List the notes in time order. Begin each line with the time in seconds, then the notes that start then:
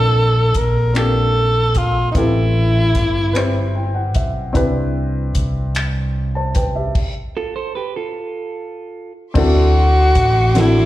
Already playing: A#1 A#3 C4 D4 F4 A4
0.54 A#1 A#4, kick, closed hi-hat
0.93 A#3 C4 D4 F4 G4, finger snap, closed hi-hat
0.97 A4
1.75 F4, kick, closed hi-hat
2.12 B3 C4 D#4, kick, closed hi-hat
2.16 A1 E4 G4 A4
2.95 G1, kick, closed hi-hat
3.33 C4 E4 G4 B4, finger snap, closed hi-hat
3.37 C5
3.75 G5
3.94 F#5
4.15 B1 E5, kick, closed hi-hat
4.53 C2 C4 D4 E4 G4 B4, kick, closed hi-hat
5.35 C2, kick, closed hi-hat
5.75 finger snap, closed hi-hat
6.35 C5 A5
6.55 B4 G5, kick, closed hi-hat
6.75 G4 E5
6.95 kick, crash
7.37 F4 A4
7.56 A4 C5
7.75 G4 B4
7.96 F4 A4
9.34 D2 C4 D4 E4 F#4 A4 E5 C6 D6, kick, crash
9.39 F#4
10.15 A1, kick, closed hi-hat
10.54 C4 D4 E4 F#4 A4, snare, closed hi-hat
10.60 E4